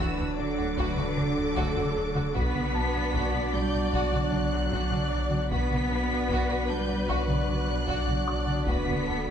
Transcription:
Already playing: sub bass D1, cello section E3, french horn section F#3 D4, synth drone F#3 D4 F#4 F#5, violin section F#4 D5 E6, felt piano A5
0.00 viola section B4
0.18 double bass section D2, violin section F#4
0.37 double bass section D2, cello section D3, violin section D4 D6, viola section A4
0.57 double bass section D2, violin section F#4
0.77 double bass section D2, violin section F#4, viola section B4, taiko
0.97 double bass section D2, violin section F#4, taiko mid
1.16 double bass section D2, violin section D4, viola section A4, taiko mid
1.36 double bass section D2, violin section F#4
1.56 double bass section D2, violin section F#4, taiko
1.76 double bass section D2, violin section F#4, taiko mid
1.96 double bass section D2, violin section D4
2.15 double bass section D2, violin section F#4, taiko mid
2.35 double bass section B1, sub bass B1, synth drone D3 D4 F#4 D5, cello section B3, french horn section D4 F#4, violin section F#4 D5 B6, viola section B4, taiko
2.54 double bass section B1, violin section F#4, taiko mid
2.74 double bass section B1, violin section D4, felt piano A5
2.94 double bass section B1, violin section F#4
3.14 double bass section B1, violin section F#4, viola section D5, taiko
3.33 double bass section B1, violin section F#4
3.54 double bass section B1, cello section G3, violin section D4 G6
3.73 double bass section B1, violin section F#4
3.92 double bass section B1, cello section F#3, violin section F#4 F#6, taiko
4.13 double bass section B1, violin section F#4, taiko mid
4.32 double bass section B1, violin section D4, taiko mid
4.52 double bass section B1, violin section F#4
4.72 double bass section B1, violin section F#4, viola section D5, taiko
4.91 double bass section B1, violin section F#4, taiko mid
5.11 double bass section B1, violin section D4
5.31 double bass section B1, violin section F#4, taiko mid
5.50 double bass section B1, sub bass B1, synth drone D3 D4 F#4 D5, cello section B3, french horn section D4 F#4, violin section F#4 D5 B6, viola section B4, taiko
5.70 double bass section B1, violin section F#4, taiko mid
5.90 double bass section B1, violin section D4
6.10 double bass section B1, violin section F#4
6.29 double bass section B1, violin section F#4, taiko
6.49 double bass section B1, violin section F#4
6.68 double bass section B1, cello section G3, violin section D4 G6
6.88 double bass section B1, violin section F#4
7.08 double bass section B1, cello section F#3, violin section F#4 F#6, felt piano D5 C#6, taiko
7.28 double bass section B1, violin section F#4, taiko mid
7.48 double bass section B1, violin section D4, taiko mid
7.67 double bass section B1, violin section F#4
7.87 double bass section B1, violin section F#4, viola section D5, taiko
8.06 double bass section B1, violin section F#4, taiko mid
8.27 double bass section B1, violin section D4, viola section D5, felt piano D6
8.46 double bass section B1, violin section F#4, taiko mid
8.66 sub bass D1, double bass section D2, cello section B3, violin section F#4 B6, viola section B4, taiko
8.86 double bass section D2, violin section F#4, taiko mid
9.06 double bass section D2, violin section D4, viola section A4
9.27 double bass section D2, violin section F#4

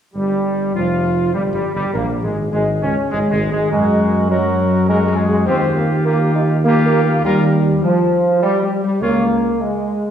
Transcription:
0.14 tuba G1, trumpet section G3, trombone section G3, french horn section G3
0.75 tuba F1, french horn section F3, trombone section F3, trumpet section F4
1.33 tuba G1, trumpet section G3, trombone section G3, french horn section G3
1.54 tuba G1, french horn section G3, trumpet section G3, trombone section G3
1.74 tuba G1, french horn section G3, trumpet section G3, trombone section G3
1.93 tuba A#1, french horn section A#3, trumpet section A#3, trombone section A#3
2.23 tuba G#1, french horn section G#3, trombone section G#3, trumpet section G#3
2.52 tuba G#1, french horn section G#3, trombone section G#3, trumpet section G#3
2.82 tuba C#2, french horn section C#4, trumpet section C#4, trombone section C#4
3.11 tuba G#1, trumpet section G#3, french horn section G#3, trombone section G#3
3.31 tuba G#1, french horn section G#3, trumpet section G#3, trombone section G#3
3.51 tuba G#1, french horn section G#3, trumpet section G#3, trombone section G#3
3.71 tuba F#2, french horn section G#3, trombone section G#3, trumpet section F#4 A#4
4.29 french horn section F#3, trombone section F#3, trumpet section F#4 A#4
4.87 french horn section G#3, trombone section G#3, trumpet section F#4 A#4
5.07 french horn section G#3
5.11 trombone section G#3
5.18 trumpet section G#4
5.27 french horn section G#3, trombone section G#3
5.46 tuba D#2, french horn section C4, trombone section C4, trumpet section F4 G4
5.75 trombone section A#3, french horn section A#3
6.04 trombone section A#3, french horn section A#3, trumpet section F4 G4
6.34 trombone section D#4, french horn section D#4
6.64 trombone section A#3, french horn section A#3, trumpet section F4 G4
6.84 trombone section A#3, french horn section A#3
7.04 trombone section A#3, french horn section A#3
7.23 tuba D#2, trombone section G3, french horn section G3, trumpet section F4 A#4
7.82 trombone section F3, french horn section F3
8.41 trombone section G3, french horn section G3
8.62 trombone section G3, french horn section G3
8.82 trombone section G3, french horn section G3
9.01 tuba C#2, trombone section A#3, french horn section A#3, trumpet section F4 C#5
9.60 trombone section G#3, french horn section G#3

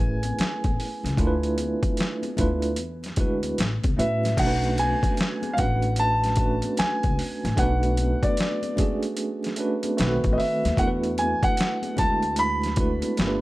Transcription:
Already playing: tine electric piano A3 C#4 E4 G#4 A#4 B4, grand piano G#5
0.00 upright bass A1
0.23 closed hi-hat, high conga
0.39 muted upright bass stroke, snare, closed hi-hat
0.64 upright bass A1, kick, closed hi-hat, high conga
0.80 open hi-hat
1.03 upright bass C#2, snare, closed hi-hat, low conga
1.17 upright bass D2, tine electric piano A3 D4 E4 F4 A#4, kick, closed hi-hat, muted conga, low conga
1.27 tine electric piano B4
1.43 closed hi-hat
1.58 closed hi-hat, high conga
1.83 kick, closed hi-hat, high conga
1.97 snare, closed hi-hat, muted conga
2.23 closed hi-hat, muted conga, high conga
2.37 upright bass D2, tine electric piano A3 D4 E4 F4 B4, kick, closed hi-hat, high conga, low conga
2.62 closed hi-hat
2.76 upright bass E2, closed hi-hat, muted conga
3.03 snare, closed hi-hat, muted conga
3.16 upright bass D2, tine electric piano G#3 D4 E4 F#4, kick, closed hi-hat
3.21 tine electric piano B4
3.43 closed hi-hat, high conga
3.58 upright bass A1, snare, closed hi-hat
3.84 upright bass C#2, kick, closed hi-hat, high conga
3.97 upright bass A2, tine electric piano A3 C#4 E4 F#4 B4, grand piano E5, closed hi-hat
4.24 snare, closed hi-hat, low conga
4.37 upright bass B1, tine electric piano A3 C#4 D4 F#4 A4, grand piano F#5, kick, closed hi-hat, crash
4.47 tine electric piano B4
4.63 closed hi-hat, muted conga
4.78 grand piano G#5, closed hi-hat, high conga
5.03 muted upright bass stroke, kick, closed hi-hat, high conga
5.17 snare, closed hi-hat
5.43 closed hi-hat, muted conga, high conga
5.54 tine electric piano A3, grand piano F5, high conga, low conga
5.58 upright bass A1, tine electric piano C#4 D4 F#4 B4, grand piano F#5, kick, closed hi-hat
5.82 closed hi-hat
5.96 grand piano A5, closed hi-hat, muted conga
6.24 snare, closed hi-hat
6.36 tine electric piano A3 C#4 D4, kick, closed hi-hat
6.40 tine electric piano F#4 B4
6.62 closed hi-hat, high conga
6.77 grand piano G#5, muted upright bass stroke, snare, closed hi-hat, muted conga
7.03 upright bass C#2, kick, closed hi-hat, high conga
7.19 open hi-hat
7.43 upright bass A1, snare, closed hi-hat, low conga
7.56 upright bass B1, tine electric piano A3 B3 D4 F#4 B4, grand piano F#5, kick, closed hi-hat
7.83 closed hi-hat
7.97 closed hi-hat, high conga
8.23 grand piano D5, muted upright bass stroke, kick, closed hi-hat, high conga
8.37 snare, closed hi-hat, muted conga
8.63 closed hi-hat, high conga
8.76 tine electric piano A3 C#4 D4 F#4 G#4, kick, closed hi-hat, high conga, low conga
9.03 closed hi-hat
9.17 closed hi-hat
9.43 snare, closed hi-hat, muted conga
9.56 tine electric piano A3 C#4 D4 F#4 B4, closed hi-hat
9.83 closed hi-hat, high conga
9.97 upright bass B1, tine electric piano A3 C4 D4 F#4 B4, snare, closed hi-hat, muted conga
10.06 tine electric piano D#3
10.24 upright bass A1, kick, closed hi-hat, muted conga, high conga
10.33 grand piano D#5
10.38 grand piano E5, open hi-hat
10.64 upright bass D#2, snare, closed hi-hat, low conga
10.77 upright bass E2, tine electric piano A3 D4 E4 F#4, grand piano F#5, kick, closed hi-hat, muted conga
10.81 tine electric piano A#4
10.87 tine electric piano B4
11.03 closed hi-hat
11.18 grand piano G#5, closed hi-hat, high conga
11.43 grand piano F#5, muted upright bass stroke, kick, closed hi-hat, high conga
11.57 snare, closed hi-hat
11.83 closed hi-hat, high conga
11.97 upright bass D2, tine electric piano A3 D4 E4 F#4, grand piano A5, kick, closed hi-hat, high conga, low conga
12.01 tine electric piano G#3
12.23 closed hi-hat
12.36 grand piano B5, closed hi-hat, muted conga
12.62 closed hi-hat, muted conga
12.66 snare
12.76 tine electric piano A3 D4 E4 F#4, kick, closed hi-hat
12.80 tine electric piano B4
13.02 closed hi-hat, high conga
13.17 upright bass G1, tine electric piano A3 D4 F4 G4 A#4, snare, closed hi-hat, muted conga
13.27 tine electric piano B4

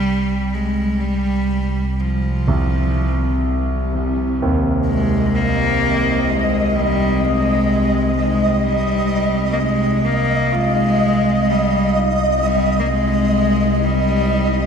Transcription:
Already playing: synth drone C2 C3, cello G3
0.55 cello G#3
1.01 cello G3
2.01 cello F3
2.48 grand piano C2
4.42 grand piano D#2
4.85 cello G#3, synth texture D#5
5.35 cello A#3
6.30 cello G#3
6.76 cello G3
7.25 cello G#3
8.18 cello G#3
8.56 cello G#3
8.63 cello G3
9.52 cello A#3
9.60 cello G#3
10.05 cello A#3
10.52 cello G#3, grand piano F4
11.49 cello G3
12.42 cello G3
12.80 cello A#3
12.88 cello G#3
13.84 cello G3

